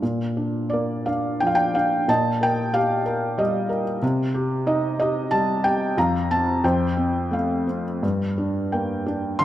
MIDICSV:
0, 0, Header, 1, 2, 480
1, 0, Start_track
1, 0, Key_signature, -2, "major"
1, 0, Tempo, 688863
1, 13, Time_signature, 3, 2, 24, 8
1, 1453, Tempo, 650054
1, 4813, Tempo, 692042
1, 6762, End_track
2, 0, Start_track
2, 0, Title_t, "Felt piano"
2, 0, Program_c, 0, 0
2, 0, Control_c, 0, 64, 127
2, 16, Note_on_c, 0, 46, 47
2, 22, Control_c, 0, 64, 0
2, 133, Control_c, 0, 64, 127
2, 257, Note_on_c, 0, 62, 33
2, 485, Note_on_c, 0, 74, 62
2, 511, Note_on_c, 0, 58, 48
2, 734, Note_off_c, 0, 62, 0
2, 737, Note_on_c, 0, 77, 65
2, 744, Note_off_c, 0, 74, 0
2, 744, Note_on_c, 0, 62, 44
2, 979, Note_on_c, 0, 79, 80
2, 988, Note_off_c, 0, 77, 0
2, 988, Note_on_c, 0, 53, 41
2, 1022, Note_on_c, 0, 77, 69
2, 1032, Note_off_c, 0, 79, 0
2, 1076, Note_off_c, 0, 77, 0
2, 1080, Note_on_c, 0, 79, 85
2, 1211, Note_off_c, 0, 62, 0
2, 1217, Note_on_c, 0, 77, 76
2, 1222, Note_on_c, 0, 62, 43
2, 1224, Note_off_c, 0, 79, 0
2, 1427, Note_off_c, 0, 46, 0
2, 1430, Note_off_c, 0, 58, 0
2, 1441, Note_off_c, 0, 53, 0
2, 1447, Note_off_c, 0, 62, 0
2, 1449, Note_on_c, 0, 46, 60
2, 1456, Note_on_c, 0, 81, 86
2, 1460, Note_off_c, 0, 77, 0
2, 1462, Note_on_c, 0, 75, 59
2, 1463, Control_c, 0, 64, 0
2, 1609, Control_c, 0, 64, 127
2, 1693, Note_on_c, 0, 70, 41
2, 1705, Note_off_c, 0, 81, 0
2, 1707, Note_on_c, 0, 79, 89
2, 1931, Note_on_c, 0, 67, 55
2, 1934, Note_on_c, 0, 77, 88
2, 1947, Note_off_c, 0, 79, 0
2, 2147, Note_off_c, 0, 75, 0
2, 2159, Note_off_c, 0, 70, 0
2, 2170, Note_on_c, 0, 70, 52
2, 2408, Note_on_c, 0, 55, 58
2, 2414, Note_on_c, 0, 75, 74
2, 2424, Note_off_c, 0, 77, 0
2, 2628, Note_off_c, 0, 70, 0
2, 2639, Note_on_c, 0, 70, 51
2, 2743, Note_off_c, 0, 75, 0
2, 2853, Note_off_c, 0, 46, 0
2, 2854, Note_off_c, 0, 67, 0
2, 2869, Note_off_c, 0, 55, 0
2, 2873, Note_off_c, 0, 70, 0
2, 2884, Note_on_c, 0, 48, 74
2, 2895, Control_c, 0, 64, 0
2, 3019, Control_c, 0, 64, 127
2, 3121, Note_on_c, 0, 67, 55
2, 3358, Note_on_c, 0, 63, 59
2, 3362, Note_on_c, 0, 75, 74
2, 3591, Note_off_c, 0, 75, 0
2, 3595, Note_off_c, 0, 67, 0
2, 3602, Note_on_c, 0, 75, 76
2, 3606, Note_on_c, 0, 67, 51
2, 3833, Note_on_c, 0, 81, 84
2, 3840, Note_on_c, 0, 55, 49
2, 3846, Note_off_c, 0, 75, 0
2, 4070, Note_off_c, 0, 67, 0
2, 4078, Note_on_c, 0, 79, 87
2, 4081, Note_on_c, 0, 67, 50
2, 4083, Note_off_c, 0, 81, 0
2, 4291, Note_off_c, 0, 48, 0
2, 4292, Note_off_c, 0, 63, 0
2, 4308, Note_off_c, 0, 55, 0
2, 4315, Note_off_c, 0, 67, 0
2, 4325, Note_on_c, 0, 41, 62
2, 4328, Note_off_c, 0, 79, 0
2, 4330, Note_on_c, 0, 82, 76
2, 4331, Control_c, 0, 64, 0
2, 4334, Note_on_c, 0, 77, 59
2, 4445, Control_c, 0, 64, 127
2, 4570, Note_on_c, 0, 60, 43
2, 4573, Note_on_c, 0, 81, 81
2, 4578, Note_off_c, 0, 82, 0
2, 4789, Note_off_c, 0, 77, 0
2, 4800, Note_off_c, 0, 41, 0
2, 4807, Note_off_c, 0, 60, 0
2, 4816, Note_on_c, 0, 41, 62
2, 4818, Note_on_c, 0, 79, 66
2, 4821, Control_c, 0, 64, 0
2, 4822, Note_off_c, 0, 81, 0
2, 4824, Note_on_c, 0, 72, 46
2, 4960, Control_c, 0, 64, 127
2, 5045, Note_on_c, 0, 60, 40
2, 5281, Note_on_c, 0, 57, 39
2, 5296, Note_on_c, 0, 77, 57
2, 5307, Note_off_c, 0, 79, 0
2, 5513, Note_off_c, 0, 72, 0
2, 5522, Note_off_c, 0, 60, 0
2, 5532, Note_on_c, 0, 60, 36
2, 5636, Note_off_c, 0, 77, 0
2, 5756, Note_off_c, 0, 41, 0
2, 5763, Note_off_c, 0, 57, 0
2, 5773, Note_off_c, 0, 60, 0
2, 5779, Note_on_c, 0, 43, 55
2, 5790, Control_c, 0, 64, 0
2, 5896, Control_c, 0, 64, 127
2, 6021, Note_on_c, 0, 62, 37
2, 6261, Note_on_c, 0, 79, 56
2, 6265, Note_on_c, 0, 58, 47
2, 6487, Note_off_c, 0, 62, 0
2, 6498, Note_on_c, 0, 62, 48
2, 6723, Note_on_c, 0, 84, 99
2, 6731, Note_on_c, 0, 50, 50
2, 6745, Note_off_c, 0, 79, 0
2, 6762, Note_off_c, 0, 43, 0
2, 6762, Note_off_c, 0, 50, 0
2, 6762, Note_off_c, 0, 58, 0
2, 6762, Note_off_c, 0, 62, 0
2, 6762, Note_off_c, 0, 84, 0
2, 6762, End_track
0, 0, End_of_file